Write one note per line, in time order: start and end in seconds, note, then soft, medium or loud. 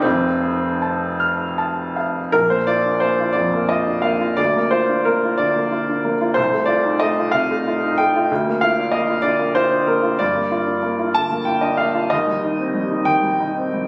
0.02 2.30 F1 medium
0.02 2.31 F2 medium
0.02 1.97 C4 medium
0.42 1.05 C5 medium
0.82 1.44 A5 medium
1.20 1.82 F6 medium
1.58 2.20 A5 medium
1.96 2.34 F5 soft
2.32 4.34 A#1 medium
2.32 2.51 A#4 medium
2.50 2.79 A#3 soft
2.50 2.69 C5 medium
2.67 2.96 F4 soft
2.67 3.02 D5 medium
2.84 3.13 D4 soft
3.00 3.29 A#3 soft
3.00 3.35 C5 medium
3.20 3.47 F4 soft
3.33 3.63 F2 soft
3.33 3.68 D5 medium
3.53 3.81 A#3 soft
3.69 3.98 F4 soft
3.69 4.04 D#5 medium
3.87 4.15 D4 soft
4.02 4.31 A#3 soft
4.02 4.37 F5 medium
4.21 4.38 F4 medium
4.37 6.32 D2 medium
4.37 4.71 D5 medium
4.56 4.83 A#3 soft
4.71 4.99 F4 medium
4.71 5.05 C5 medium
4.89 5.16 D4 soft
5.05 5.33 A#3 soft
5.05 5.39 A#4 medium
5.24 5.50 F4 soft
5.38 5.65 D3 soft
5.38 6.36 D5 medium
5.56 5.82 A#3 soft
5.71 5.98 F4 soft
5.89 6.15 D4 soft
6.05 6.30 A#3 soft
6.21 6.37 F4 medium
6.34 8.26 C2 medium
6.34 6.68 C5 medium
6.52 6.78 A3 soft
6.66 6.94 F4 medium
6.66 7.00 D5 medium
6.85 7.11 D#4 soft
7.00 7.27 A3 soft
7.00 7.33 D#5 medium
7.18 7.44 F4 soft
7.32 7.59 C3 soft
7.32 7.97 F5 medium
7.51 7.77 A3 soft
7.67 7.92 F4 medium
7.84 8.09 D#4 soft
7.98 8.24 A3 soft
7.98 8.61 G5 medium
8.16 8.31 F4 medium
8.31 10.16 D2 medium
8.47 8.71 A#3 soft
8.61 8.87 F4 medium
8.61 8.93 F5 medium
8.79 9.03 D4 soft
8.92 9.19 A#3 soft
8.92 9.24 D#5 medium
9.09 9.34 F4 soft
9.22 9.49 D3 soft
9.22 9.55 D5 medium
9.39 9.65 A#3 soft
9.55 9.82 F4 medium
9.55 9.87 C5 medium
9.71 9.97 D4 soft
9.87 10.13 A#3 soft
9.87 10.19 A#4 medium
10.03 10.19 F4 medium
10.19 12.08 G2 medium
10.19 11.15 D5 medium
10.35 10.61 A#3 soft
10.51 10.77 F4 medium
10.67 10.93 D4 soft
10.83 11.09 A#3 soft
10.99 11.25 F4 soft
11.15 11.42 D3 soft
11.15 11.47 A5 medium
11.31 11.57 A#3 soft
11.45 11.73 F4 soft
11.45 11.62 G5 medium
11.61 11.89 D4 soft
11.61 11.79 D#5 medium
11.77 12.05 A#3 soft
11.77 12.11 F5 medium
11.95 12.11 F4 soft
12.10 13.88 D#2 medium
12.10 13.07 D#5 medium
12.27 12.53 G3 soft
12.44 12.69 D#4 soft
12.59 12.85 C4 soft
12.75 13.01 G3 soft
12.92 13.17 D#4 soft
13.05 13.33 D#3 soft
13.05 13.88 G5 medium
13.23 13.49 G3 soft
13.40 13.67 D#4 soft
13.58 13.84 C4 soft
13.74 13.88 G3 soft